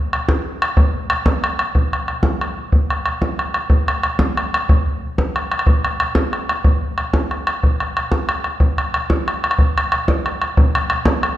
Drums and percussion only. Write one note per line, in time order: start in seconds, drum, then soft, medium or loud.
0.13 bodhran medium
0.29 bodhran medium
0.62 bodhran medium
0.77 bodhran medium
0.95 bodhran soft
1.10 bodhran medium
1.26 bodhran medium
1.44 bodhran medium
1.59 bodhran medium
1.75 bodhran medium
1.93 bodhran medium
2.08 bodhran medium
2.23 bodhran medium
2.41 bodhran medium
2.72 bodhran medium
2.90 bodhran medium
3.06 bodhran medium
3.22 bodhran medium
3.39 bodhran medium
3.54 bodhran medium
3.70 bodhran medium
3.88 bodhran medium
4.03 bodhran medium
4.19 bodhran medium
4.37 bodhran medium
4.54 bodhran medium
4.69 bodhran medium
5.18 bodhran medium
5.36 bodhran medium
5.52 bodhran medium
5.59 bodhran medium
5.67 bodhran medium
5.85 bodhran medium
6.00 bodhran medium
6.15 bodhran medium
6.33 bodhran medium
6.49 bodhran medium
6.64 bodhran medium
6.98 bodhran medium
7.14 bodhran medium
7.31 bodhran soft
7.47 bodhran medium
7.63 bodhran medium
7.80 bodhran medium
7.97 bodhran medium
8.12 bodhran medium
8.29 bodhran medium
8.44 bodhran medium
8.60 bodhran medium
8.78 bodhran medium
8.94 bodhran medium
9.10 bodhran medium
9.28 bodhran medium
9.44 bodhran medium
9.51 bodhran medium
9.59 bodhran medium
9.78 bodhran medium
9.92 bodhran medium
10.08 bodhran medium
10.26 bodhran medium
10.42 bodhran medium
10.57 bodhran medium
10.75 bodhran medium
10.90 bodhran medium
11.05 bodhran medium
11.23 bodhran medium